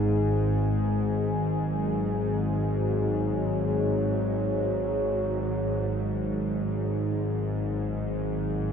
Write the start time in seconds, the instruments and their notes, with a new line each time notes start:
Already playing: synth drone G#1 G#2, analog synth pad G#2 D#3 G#3 G#4, singing bowl B4
1.32 analog synth pad F#3